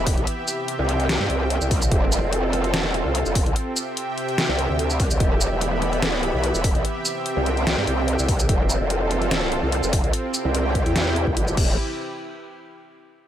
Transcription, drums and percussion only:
0.07 kick loud
0.07 open hi-hat medium
0.18 closed hi-hat soft
0.27 closed hi-hat medium
0.48 closed hi-hat medium
0.48 shaker medium
0.68 closed hi-hat medium
0.89 closed hi-hat medium
1.00 closed hi-hat soft
1.09 snare loud
1.09 closed hi-hat medium
1.30 closed hi-hat medium
1.50 closed hi-hat medium
1.61 shaker soft
1.71 kick loud
1.71 open hi-hat medium
1.82 closed hi-hat soft
1.82 shaker medium
1.91 kick loud
1.91 closed hi-hat medium
2.12 closed hi-hat medium
2.12 shaker medium
2.33 closed hi-hat medium
2.53 closed hi-hat medium
2.64 closed hi-hat soft
2.74 snare loud
2.74 closed hi-hat medium
2.94 closed hi-hat medium
3.15 closed hi-hat medium
3.26 shaker soft
3.35 kick loud
3.35 open hi-hat medium
3.46 closed hi-hat soft
3.56 closed hi-hat medium
3.76 closed hi-hat medium
3.76 shaker medium
3.97 closed hi-hat medium
4.18 closed hi-hat soft
4.29 closed hi-hat soft
4.38 snare loud
4.38 closed hi-hat medium
4.59 closed hi-hat soft
4.79 closed hi-hat medium
4.90 shaker medium
5.00 kick loud
5.00 open hi-hat medium
5.11 closed hi-hat soft
5.11 shaker medium
5.20 kick loud
5.20 closed hi-hat medium
5.41 closed hi-hat soft
5.41 shaker medium
5.61 closed hi-hat medium
5.82 closed hi-hat soft
5.93 closed hi-hat soft
6.02 snare loud
6.02 closed hi-hat medium
6.23 closed hi-hat soft
6.44 closed hi-hat medium
6.54 shaker medium
6.64 kick loud
6.64 open hi-hat medium
6.75 closed hi-hat soft
6.85 closed hi-hat medium
7.05 closed hi-hat soft
7.05 shaker medium
7.26 closed hi-hat medium
7.46 closed hi-hat soft
7.57 closed hi-hat soft
7.67 snare loud
7.67 closed hi-hat medium
7.87 closed hi-hat soft
8.08 closed hi-hat medium
8.19 shaker medium
8.28 kick loud
8.28 open hi-hat medium
8.39 closed hi-hat soft
8.39 shaker medium
8.49 kick loud
8.49 closed hi-hat medium
8.70 closed hi-hat soft
8.70 shaker medium
8.90 closed hi-hat medium
9.11 closed hi-hat soft
9.22 closed hi-hat soft
9.31 snare loud
9.31 closed hi-hat medium
9.52 closed hi-hat medium
9.72 closed hi-hat medium
9.83 shaker medium
9.93 kick loud
9.93 open hi-hat medium
10.04 closed hi-hat soft
10.13 closed hi-hat medium
10.34 closed hi-hat medium
10.34 shaker medium
10.55 closed hi-hat medium
10.75 kick medium
10.75 closed hi-hat medium
10.86 closed hi-hat soft
10.96 snare loud
10.96 closed hi-hat medium
11.16 closed hi-hat medium
11.27 kick medium
11.37 closed hi-hat medium
11.48 shaker medium
11.57 kick loud
11.57 crash medium

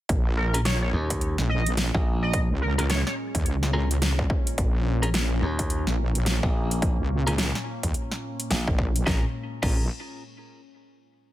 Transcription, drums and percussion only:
0.09 kick loud
0.09 closed hi-hat medium
0.54 closed hi-hat medium
0.65 snare loud
0.65 closed hi-hat medium
1.10 kick medium
1.10 closed hi-hat medium
1.21 closed hi-hat medium
1.38 snare medium
1.66 closed hi-hat medium
1.77 snare loud
1.77 closed hi-hat medium
1.95 kick loud
2.33 kick loud
2.33 closed hi-hat medium
2.79 closed hi-hat medium
2.90 snare loud
2.90 closed hi-hat medium
3.07 snare medium
3.35 kick medium
3.35 closed hi-hat medium
3.46 closed hi-hat medium
3.63 snare medium
3.91 closed hi-hat medium
4.02 snare loud
4.02 closed hi-hat medium
4.19 kick loud
4.30 kick loud
4.47 closed hi-hat medium
4.58 kick loud
4.58 closed hi-hat medium
5.03 closed hi-hat medium
5.14 snare loud
5.14 closed hi-hat medium
5.59 kick medium
5.59 closed hi-hat medium
5.70 closed hi-hat medium
5.87 snare medium
6.15 closed hi-hat medium
6.26 snare loud
6.26 closed hi-hat medium
6.43 kick loud
6.71 closed hi-hat medium
6.82 kick loud
6.82 closed hi-hat medium
7.27 closed hi-hat medium
7.38 snare loud
7.38 closed hi-hat medium
7.55 snare soft
7.83 kick medium
7.83 closed hi-hat medium
7.94 closed hi-hat medium
8.11 snare soft
8.40 closed hi-hat medium
8.51 snare loud
8.51 closed hi-hat medium
8.68 kick loud
8.79 kick loud
8.96 closed hi-hat medium
9.07 kick loud
9.07 snare medium
9.63 kick loud
9.63 crash medium

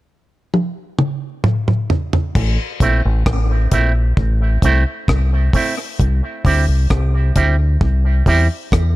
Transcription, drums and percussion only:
0.54 high tom medium
0.99 mid tom medium
1.44 mid tom medium
1.68 mid tom medium
1.90 floor tom medium
2.13 floor tom medium
2.35 kick loud
2.35 crash medium
2.80 kick medium
2.80 closed hi-hat medium
3.26 kick loud
3.26 cross-stick loud
3.72 kick medium
3.72 closed hi-hat medium
4.17 kick loud
4.62 kick medium
4.62 closed hi-hat medium
5.08 kick loud
5.08 cross-stick loud
5.53 kick medium
5.53 open hi-hat medium
6.00 kick loud
6.00 hi-hat pedal medium
6.45 kick medium
6.45 open hi-hat medium
6.90 kick loud
6.90 cross-stick loud
6.90 hi-hat pedal medium
7.36 kick medium
7.36 closed hi-hat medium
7.81 kick loud
8.26 kick medium
8.26 open hi-hat soft
8.72 kick loud
8.72 cross-stick loud
8.72 hi-hat pedal medium

